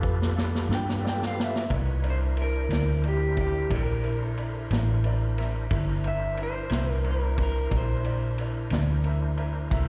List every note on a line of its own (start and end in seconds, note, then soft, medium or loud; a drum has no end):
0.00 0.67 F2 loud
0.00 1.66 F4 medium
0.00 0.27 F4 medium
0.00 1.66 G4 medium
0.00 1.66 A4 medium
0.00 0.28 A4 medium
0.00 1.66 B4 medium
0.00 0.28 B4 medium
0.00 kick medium
0.22 snare medium
0.36 0.61 F4 medium
0.36 0.62 A4 medium
0.36 0.62 B4 medium
0.36 snare loud
0.55 snare medium
0.69 1.67 G2 loud
0.69 0.95 F4 medium
0.69 0.95 A4 medium
0.69 0.96 B4 medium
0.69 snare loud
0.75 0.89 G5 loud
0.89 snare medium
1.03 1.28 F4 medium
1.03 1.29 A4 medium
1.03 1.29 D5 medium
1.03 snare loud
1.09 1.23 G5 medium
1.22 snare medium
1.27 1.43 F5 loud
1.35 1.61 F4 medium
1.35 1.61 A4 medium
1.35 1.62 B4 medium
1.40 1.73 E5 loud
1.40 snare loud
1.56 snare loud
1.70 2.67 C2 medium
1.70 2.04 D#4 medium
1.70 1.95 E4 medium
1.70 2.04 F4 medium
1.70 1.96 A#4 medium
1.70 2.04 B4 medium
1.70 2.03 C#5 medium
1.70 1.96 D5 medium
1.70 kick loud
1.70 ride medium
2.03 5.67 D4 medium
2.03 2.28 E4 medium
2.03 5.68 E4 medium
2.03 2.28 A#4 medium
2.03 5.68 A#4 medium
2.03 5.68 C5 medium
2.03 2.29 D5 medium
2.03 ride medium
2.10 2.18 C5 loud
2.37 2.62 E4 medium
2.37 2.62 A#4 medium
2.37 2.63 E5 medium
2.37 ride medium
2.42 3.02 A#4 loud
2.69 3.67 D2 medium
2.69 2.96 E4 medium
2.69 2.96 A#4 medium
2.69 2.96 D5 medium
2.69 snare loud
2.69 ride medium
3.04 3.29 E4 medium
3.04 3.29 A#4 soft
3.04 3.30 D5 medium
3.04 ride medium
3.08 3.40 G4 medium
3.37 3.63 E4 medium
3.37 3.73 G4 medium
3.37 3.63 A#4 soft
3.37 3.64 D5 medium
3.37 kick medium
3.37 ride medium
3.70 4.68 A#1 medium
3.70 3.95 E4 medium
3.70 3.96 A#4 soft
3.70 3.96 D5 medium
3.70 kick medium
3.70 ride medium
3.75 4.23 A#4 medium
4.04 4.29 E4 medium
4.04 4.29 A#4 soft
4.04 4.30 E5 medium
4.04 ride medium
4.23 4.44 A4 medium
4.37 4.62 E4 medium
4.37 4.63 A#4 medium
4.37 4.63 D5 medium
4.37 ride medium
4.71 5.68 A1 medium
4.71 4.96 E4 medium
4.71 4.97 A#4 medium
4.71 4.97 D5 medium
4.71 snare loud
4.71 ride medium
5.04 5.29 E4 medium
5.04 5.30 A#4 medium
5.04 5.30 D5 medium
5.04 ride medium
5.38 5.63 E4 medium
5.38 5.63 A#4 medium
5.38 5.64 E5 medium
5.38 snare soft
5.38 ride medium
5.71 6.68 G1 medium
5.71 9.69 D4 medium
5.71 5.96 E4 medium
5.71 9.69 E4 medium
5.71 5.97 A#4 medium
5.71 9.69 A#4 medium
5.71 9.68 C5 medium
5.71 5.97 E5 medium
5.71 kick loud
5.71 ride medium
6.04 6.30 E4 medium
6.04 6.30 A#4 medium
6.04 6.31 E5 medium
6.04 6.40 E5 loud
6.04 ride medium
6.37 6.63 E4 medium
6.37 6.63 A#4 medium
6.37 6.64 E5 medium
6.37 ride medium
6.43 6.93 C5 loud
6.70 7.68 C2 medium
6.70 6.96 E4 medium
6.70 6.97 A#4 medium
6.70 6.97 E5 medium
6.70 snare loud
6.70 ride medium
6.93 7.09 A#4 loud
7.04 7.29 E4 medium
7.04 7.29 A#4 soft
7.04 7.30 C5 medium
7.04 ride medium
7.11 7.42 A#4 medium
7.35 7.62 E4 medium
7.35 7.62 A#4 soft
7.35 7.63 E5 medium
7.35 kick medium
7.35 ride medium
7.43 7.75 A#4 medium
7.70 8.69 A#1 medium
7.70 7.96 E4 medium
7.70 7.96 A#4 soft
7.70 7.96 D5 medium
7.70 kick medium
7.70 ride medium
7.78 8.46 C5 medium
8.04 8.29 E4 medium
8.04 8.30 A#4 medium
8.04 8.31 D5 medium
8.04 ride medium
8.38 8.63 E4 medium
8.38 8.64 A#4 medium
8.38 8.65 D5 medium
8.38 ride medium
8.70 9.69 D2 medium
8.70 8.97 E4 medium
8.70 8.97 A#4 medium
8.70 8.97 D5 medium
8.70 snare loud
8.70 ride medium
9.04 9.30 E4 medium
9.04 9.30 A#4 medium
9.04 9.31 E5 medium
9.04 ride medium
9.37 9.63 E4 medium
9.37 9.64 A#4 medium
9.37 9.65 E5 medium
9.37 ride medium
9.70 9.88 C2 medium
9.70 9.88 D3 medium
9.70 9.88 E4 medium
9.70 9.88 A#4 medium
9.70 9.88 C5 medium
9.70 9.88 E5 medium
9.70 kick loud
9.70 ride medium